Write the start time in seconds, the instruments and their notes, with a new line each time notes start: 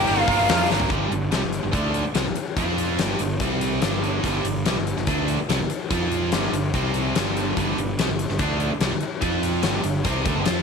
Already playing: overdriven electric guitar G2 D3, lead electric guitar G4
0.06 fingered electric bass G1, overdriven electric guitar G3 A#3 D4 A#4, open hi-hat
0.20 lead electric guitar F4
0.28 fingered electric bass G1, overdriven electric guitar A#3 D4 A#4, kick, open hi-hat
0.32 overdriven electric guitar G3
0.48 fingered electric bass F2, overdriven electric guitar G2 D3 G3 A#3 D4 A#4, snare, open hi-hat
0.70 fingered electric bass G1, overdriven electric guitar G3 A#3 D4 A#4, snare
0.80 floor tom
0.89 fingered electric bass G1, overdriven electric guitar G2 D3 G3, kick, closed hi-hat
1.11 fingered electric bass G1, overdriven electric guitar G2 D3, closed hi-hat
1.31 fingered electric bass C2, overdriven electric guitar C3 G3, snare, closed hi-hat
1.42 fingered electric bass G1, overdriven electric guitar G2 D3
1.53 closed hi-hat
1.63 fingered electric bass G1, overdriven electric guitar G2 D3
1.72 fingered electric bass D2, overdriven electric guitar D3 A3 D4, kick, closed hi-hat
1.94 closed hi-hat
2.05 muted fingered electric bass stroke, muted overdriven electric guitar stroke
2.15 fingered electric bass C2, overdriven electric guitar C3 G3, snare, closed hi-hat
2.26 fingered electric bass G1, overdriven electric guitar G2 D3
2.36 muted fingered electric bass stroke, muted overdriven electric guitar stroke, closed hi-hat
2.57 fingered electric bass F2, overdriven electric guitar F3 C4 F4, kick, closed hi-hat
2.78 closed hi-hat
2.98 fingered electric bass G1, overdriven electric guitar G2 D3 G3, snare, closed hi-hat
3.19 fingered electric bass G1, overdriven electric guitar G2 D3, closed hi-hat
3.40 fingered electric bass C2, overdriven electric guitar C3 G3 C4, kick, closed hi-hat
3.61 closed hi-hat
3.82 fingered electric bass G1, overdriven electric guitar G2 D3 G3, snare, closed hi-hat
4.04 closed hi-hat
4.24 fingered electric bass G1, overdriven electric guitar G2 D3 G3, kick, closed hi-hat
4.45 fingered electric bass G1, overdriven electric guitar G2 D3, closed hi-hat
4.65 fingered electric bass C2, overdriven electric guitar C3 G3, snare, closed hi-hat
4.76 fingered electric bass G1, overdriven electric guitar G2 D3
4.87 closed hi-hat
4.97 fingered electric bass G1, overdriven electric guitar G2 D3, snare
5.07 fingered electric bass D2, overdriven electric guitar D3 A3 D4, kick, closed hi-hat
5.28 closed hi-hat
5.40 muted overdriven electric guitar stroke, muted fingered electric bass stroke
5.49 fingered electric bass C2, overdriven electric guitar C3 G3, snare, closed hi-hat
5.59 fingered electric bass G1, overdriven electric guitar G2 D3
5.70 muted overdriven electric guitar stroke, muted fingered electric bass stroke, closed hi-hat
5.91 fingered electric bass F2, overdriven electric guitar F3 C4 F4, kick, closed hi-hat
6.11 closed hi-hat
6.32 fingered electric bass G1, overdriven electric guitar G2 D3 G3, snare, closed hi-hat
6.52 fingered electric bass G1, overdriven electric guitar G2 D3, closed hi-hat
6.74 fingered electric bass C2, overdriven electric guitar C3 G3 C4, kick, closed hi-hat
6.94 closed hi-hat
7.15 fingered electric bass G1, overdriven electric guitar G2 D3 G3, snare, closed hi-hat
7.37 closed hi-hat
7.57 fingered electric bass G1, overdriven electric guitar G2 D3 G3, kick, closed hi-hat
7.78 fingered electric bass G1, overdriven electric guitar G2 D3, closed hi-hat
7.98 fingered electric bass C2, overdriven electric guitar C3 G3, snare, closed hi-hat
8.09 fingered electric bass G1, overdriven electric guitar G2 D3
8.19 closed hi-hat
8.29 fingered electric bass G1, overdriven electric guitar G2 D3, snare
8.39 fingered electric bass D2, overdriven electric guitar D3 A3 D4, kick, closed hi-hat
8.60 closed hi-hat
8.71 muted fingered electric bass stroke, muted overdriven electric guitar stroke
8.80 fingered electric bass C2, overdriven electric guitar C3 G3, snare, closed hi-hat
8.90 fingered electric bass G1, overdriven electric guitar G2 D3
9.01 muted fingered electric bass stroke, muted overdriven electric guitar stroke, closed hi-hat
9.21 fingered electric bass F2, overdriven electric guitar F3 C4 F4, kick, closed hi-hat
9.43 closed hi-hat
9.62 fingered electric bass G1, overdriven electric guitar G2 D3 G3, snare, closed hi-hat
9.84 fingered electric bass G1, overdriven electric guitar G2 D3, closed hi-hat
10.04 fingered electric bass C2, overdriven electric guitar C3 G3 C4, kick, closed hi-hat
10.24 fingered electric bass D2, overdriven electric guitar D3 A3, kick, closed hi-hat
10.34 fingered electric bass G1, overdriven electric guitar G2 D3
10.44 fingered electric bass F2, overdriven electric guitar F3 C4 F4, snare, closed hi-hat